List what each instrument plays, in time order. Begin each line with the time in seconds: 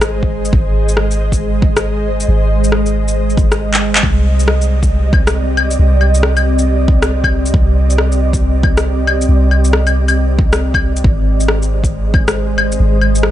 Already playing: 808-style bass G#1, ambient pad G#3 G#4 C5 D#5
0.01 cross-stick, shaker
0.23 kick
0.45 shaker
0.53 808-style bass G#1, kick
0.89 shaker
0.97 cross-stick
1.11 shaker
1.32 kick, shaker
1.62 kick
1.77 cross-stick, shaker
2.20 shaker
2.28 808-style bass G#1
2.64 shaker
2.72 cross-stick
2.86 shaker
3.08 shaker
3.30 shaker
3.37 kick, shaker
3.52 cross-stick, shaker
3.74 clap
3.95 clap, shaker
4.03 808-style bass C2, ambient pad C4 G4 D5, kick
4.40 shaker
4.48 cross-stick
4.61 shaker
4.83 kick, shaker
5.13 kick, claves
5.27 cross-stick, shaker
5.57 claves
5.71 shaker
5.79 808-style bass C2
6.01 claves
6.15 shaker
6.23 cross-stick
6.37 claves, shaker
6.59 shaker
6.88 kick
7.02 cross-stick, shaker
7.24 kick, claves
7.46 shaker
7.54 808-style bass C2, kick
7.90 shaker
7.98 cross-stick
8.12 shaker
8.33 kick, shaker
8.63 kick, claves
8.77 cross-stick, shaker
9.07 claves
9.21 shaker
9.29 808-style bass C2
9.51 claves
9.65 shaker
9.73 cross-stick
9.87 claves, shaker
10.08 claves, shaker
10.39 kick
10.53 cross-stick, shaker
10.74 kick, claves
10.96 shaker
11.04 808-style bass G#1, ambient pad G#3 G#4 C5 D#5, kick
11.40 shaker
11.48 cross-stick
11.62 shaker
11.84 kick, shaker
12.14 kick, claves
12.28 cross-stick, shaker
12.58 claves
12.72 shaker
12.80 808-style bass G#1
13.01 claves
13.15 shaker
13.23 cross-stick